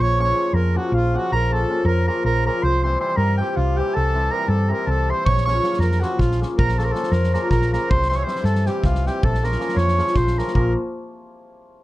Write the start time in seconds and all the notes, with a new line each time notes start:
0.00 A#1 C#5 C#6
0.18 C#3 F3 A#3 C#4 F4 C#6
0.24 C#5
0.34 C#3 F3 A#3 C#4 F4
0.53 F2 A#4 A#5
0.74 C#3 F3 A#3 C#4 F4 F#4 F#5
0.92 A#1 F5
0.96 F4
1.14 C#3 F3 A#3 C#4 F4 F#4 F#5
1.32 A#1 A#4 A#5
1.50 C#3 F3 A#3 C#4 F4 A5
1.54 A4
1.68 C#3 F3 A#3 C#4 F4
1.85 F2 A#4 A#5
2.07 C#3 F3 A#3 C#4 F4 A#4 A#5
2.24 A#1 A#4 A#5
2.45 C#3 F3 A#3 C#4 F4 A#4 A#5
2.62 C2 C5 C6
2.83 C3 E3 G3 C4 E4 C5 C6
2.99 C3 E3 G3 C4 E4 C5 C6
3.17 G2 A#4 A#5
3.38 C3 E3 G3 C4 E4 G4 G5
3.55 C2 F4 F5
3.77 C3 E3 G3 C4 E4 G4 G5
3.94 C2 A4 A5
4.14 C3 E3 G3 C4 E4
4.31 C3 E3 G3 C4 E4 A#4 A#5
4.48 G2 A4 A5
4.69 C3 E3 G3 C4 E4 A#5
4.73 A#4
4.87 C2 A4 A5
5.08 C3 E3 G3 C4 E4 C5 C6
5.26 A#1 C#5 C#6, kick
5.37 snare
5.46 C#3 F3 A#3 C#4 F4 C#5 C#6, snare
5.62 C#3 F3 A#3 C#4 F4, snare
5.73 snare
5.79 F2 A#4 A#5, snare
5.92 snare
6.00 C#3 F3 A#3 C#4 F4 F#4 F#5, snare
6.19 A#1 F4 F5, kick, snare
6.31 snare
6.41 C#3 F3 A#3 C#4 F4, snare
6.58 A#1 A#4 A#5, kick
6.69 snare
6.78 C#3 F3 A#3 C#4 F4 A4 A5, snare
6.84 A#4 A#5
6.91 C#3 F3 A#3 C#4 A4 A5
6.95 F4, snare
7.03 snare
7.11 F2 A#4 A#5, snare
7.24 snare
7.33 C#3 F3 A#3 C#4 F4 A#4 A#5, snare
7.50 A#1 A#4 A#5, kick, snare
7.62 snare
7.72 C#3 F3 A#3 C#4 F4 A#4 A#5, snare
7.89 C2 C5 C6, kick
8.02 snare
8.09 C3 E3 G3 C4 E4 C5 C6, snare
8.16 C#5 C#6
8.23 C3 C5 C6
8.27 E3 G3 C4 E4, snare
8.36 snare
8.44 G2 A4 A5, snare
8.55 snare
8.65 C3 E3 G3 C4 E4 G4 G5, snare
8.84 C2 F4 F5, kick, snare
8.95 snare
9.05 C3 E3 G3 C4 E4 G4 G5, snare
9.23 A#1 A4 A5, kick
9.35 snare
9.43 C#3 F3 A#3 C#4 F4 A#4 A#5, snare
9.52 snare
9.59 C#3 F3 A#3 C#4 F4, snare
9.69 snare
9.75 F2 C#5 C#6, snare
9.88 snare
9.98 C#3 F3 A#3 C#4 F4, snare
10.07 snare
10.15 A#1 C5 C6, kick, snare
10.27 snare
10.37 C#3 F3 A#3 C#4 F4 A#4 A#5, snare
10.47 snare
10.54 A#1 F3 A#3 C#4 F4 A#4 A#5, kick